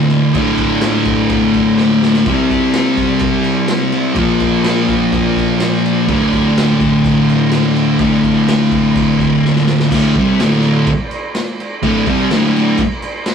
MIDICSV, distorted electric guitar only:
0, 0, Header, 1, 2, 480
1, 0, Start_track
1, 0, Key_signature, -1, "minor"
1, 0, Tempo, 478469
1, 348, Time_signature, 4, 2, 24, 8
1, 13390, End_track
2, 0, Start_track
2, 0, Title_t, "Distorted electric guitar"
2, 0, Program_c, 0, 30
2, 0, Note_on_c, 0, 38, 87
2, 0, Note_on_c, 0, 45, 82
2, 0, Note_on_c, 0, 50, 107
2, 326, Note_off_c, 0, 38, 0
2, 342, Note_off_c, 0, 45, 0
2, 344, Note_on_c, 0, 38, 85
2, 354, Note_off_c, 0, 50, 0
2, 364, Note_on_c, 0, 45, 108
2, 388, Note_on_c, 0, 50, 98
2, 2248, Note_off_c, 0, 38, 0
2, 2258, Note_off_c, 0, 45, 0
2, 2270, Note_off_c, 0, 50, 0
2, 2273, Note_on_c, 0, 48, 91
2, 2296, Note_on_c, 0, 55, 99
2, 2323, Note_on_c, 0, 60, 94
2, 4156, Note_off_c, 0, 48, 0
2, 4160, Note_on_c, 0, 46, 92
2, 4182, Note_off_c, 0, 55, 0
2, 4188, Note_on_c, 0, 53, 94
2, 4196, Note_off_c, 0, 60, 0
2, 4210, Note_on_c, 0, 58, 112
2, 6073, Note_off_c, 0, 46, 0
2, 6091, Note_on_c, 0, 38, 93
2, 6098, Note_off_c, 0, 58, 0
2, 6122, Note_off_c, 0, 53, 0
2, 6126, Note_on_c, 0, 45, 91
2, 6135, Note_on_c, 0, 50, 99
2, 8016, Note_off_c, 0, 38, 0
2, 8016, Note_off_c, 0, 45, 0
2, 8020, Note_on_c, 0, 38, 90
2, 8051, Note_on_c, 0, 45, 93
2, 8069, Note_off_c, 0, 50, 0
2, 8073, Note_on_c, 0, 50, 96
2, 9925, Note_off_c, 0, 38, 0
2, 9941, Note_off_c, 0, 45, 0
2, 9952, Note_off_c, 0, 50, 0
2, 9964, Note_on_c, 0, 38, 96
2, 9967, Note_on_c, 0, 45, 93
2, 9979, Note_on_c, 0, 50, 106
2, 10184, Note_off_c, 0, 38, 0
2, 10186, Note_off_c, 0, 45, 0
2, 10189, Note_on_c, 0, 48, 82
2, 10192, Note_off_c, 0, 50, 0
2, 10212, Note_on_c, 0, 55, 98
2, 10214, Note_on_c, 0, 60, 96
2, 10417, Note_off_c, 0, 48, 0
2, 10428, Note_off_c, 0, 55, 0
2, 10429, Note_off_c, 0, 60, 0
2, 10438, Note_on_c, 0, 38, 96
2, 10448, Note_on_c, 0, 45, 101
2, 10460, Note_on_c, 0, 50, 115
2, 10902, Note_off_c, 0, 38, 0
2, 10907, Note_off_c, 0, 45, 0
2, 10913, Note_off_c, 0, 50, 0
2, 11867, Note_on_c, 0, 38, 95
2, 11873, Note_on_c, 0, 45, 107
2, 11891, Note_on_c, 0, 50, 100
2, 12098, Note_off_c, 0, 38, 0
2, 12101, Note_off_c, 0, 45, 0
2, 12110, Note_off_c, 0, 50, 0
2, 12116, Note_on_c, 0, 48, 86
2, 12121, Note_on_c, 0, 55, 97
2, 12129, Note_on_c, 0, 60, 97
2, 12343, Note_off_c, 0, 48, 0
2, 12345, Note_off_c, 0, 55, 0
2, 12347, Note_on_c, 0, 38, 92
2, 12349, Note_off_c, 0, 60, 0
2, 12360, Note_on_c, 0, 45, 112
2, 12370, Note_on_c, 0, 50, 101
2, 12819, Note_off_c, 0, 38, 0
2, 12826, Note_off_c, 0, 45, 0
2, 12831, Note_off_c, 0, 50, 0
2, 13390, End_track
0, 0, End_of_file